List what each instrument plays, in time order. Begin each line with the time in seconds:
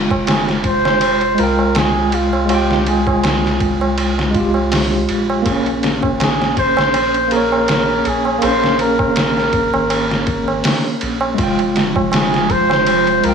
Already playing: sub bass F1, tine electric piano G#3 F4 G5
0.11 kick, tabla na
0.27 muted trumpet G#4, snare, ride, tabla na
0.48 snare, tabla na
0.64 muted trumpet C5, kick, ride
0.85 snare, tabla na
1.01 ride, tabla na
1.21 ride, tabla na
1.34 tine electric piano G#3, ride
1.39 sub bass C2, tine electric piano F4, muted trumpet A#4
1.43 tine electric piano G5
1.59 tabla na
1.75 muted trumpet G#4, snare, ride, tabla na
1.96 tabla na
2.12 muted trumpet F4, ride
2.33 tabla na
2.45 tine electric piano G#3, ride
2.50 tine electric piano F4, muted trumpet G4, tabla na
2.55 tine electric piano G5
2.70 snare, tabla na
2.86 muted trumpet G#4, ride
3.07 kick, tabla na
3.24 snare, ride, tabla na
3.43 snare, tabla na
3.60 sub bass C2, kick, ride
3.81 tabla na
3.98 ride, tabla na
4.18 snare, tabla na
4.30 tine electric piano G#3
4.34 tine electric piano F4, kick, ride
4.39 tine electric piano G4
4.54 tabla na
4.72 snare, open hi-hat, tabla na
4.91 tabla na
5.09 sub bass A#1, ride
5.30 tabla na
5.42 tine electric piano A#3, kick, ride, tabla na
5.46 tine electric piano G#4
5.51 tine electric piano C#4
5.66 ride, tabla na
5.83 snare, ride
6.03 kick, tabla na
6.20 muted trumpet G#4, snare, ride, tabla na
6.41 snare, tabla na
6.57 muted trumpet C5, kick, ride
6.77 snare, tabla na
6.94 ride, tabla na
7.14 ride, tabla na
7.27 tine electric piano A#3, ride
7.32 tine electric piano G#4, muted trumpet A#4
7.36 tine electric piano C#5
7.52 tabla na
7.68 snare, ride, tabla na
7.89 tabla na
8.05 sub bass A#1, muted trumpet G#4, ride
8.25 tabla na
8.38 tine electric piano A#3, ride, tabla na
8.43 sub bass A#1, tine electric piano G#4, muted trumpet C5
8.47 tine electric piano C#4
8.62 snare, tabla na
8.79 muted trumpet A#4, ride
8.99 kick, tabla na
9.16 snare, ride, tabla na
9.37 snare, tabla na
9.53 kick, ride
9.74 sub bass G#1, tabla na
9.90 ride, tabla na
10.10 snare, tabla na
10.27 kick, ride
10.48 tabla na
10.64 snare, open hi-hat, tabla na
10.84 tabla na
11.01 sub bass A#1, ride
11.21 tabla na
11.34 tine electric piano G#3, kick, ride, tabla na
11.38 sub bass F1, string machine F3 F4, tine electric piano F4
11.43 tine electric piano G5
11.58 ride, tabla na
11.76 snare, ride
11.96 kick, tabla na
12.12 muted trumpet G#4, snare, ride, tabla na
12.32 snare, tabla na
12.49 muted trumpet C5, kick, ride
12.70 snare, tabla na
12.87 ride, tabla na
13.06 ride, tabla na
13.20 tine electric piano G#3, ride
13.24 sub bass C2, tine electric piano F4, muted trumpet A#4
13.29 tine electric piano G5